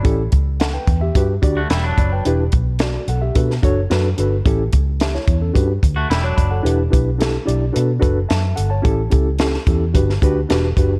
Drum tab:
HH |x-x-x-x-x-x-x-x-|x-x-x-x-x-x-x-x-|x-x-x-x-x-x-x-x-|x-x-x-x-x-x-x-x-|
SD |----o-------o---|----o----o--o---|----oo------o---|----o-------o---|
BD |o-o---o-o-o---o-|--o-----o-o-----|o-o---o-o-o---o-|--o-------o-----|

HH |x-x-x-x-x-x-x-x-|
SD |----oo---o--o---|
BD |o-o---o-o-o---o-|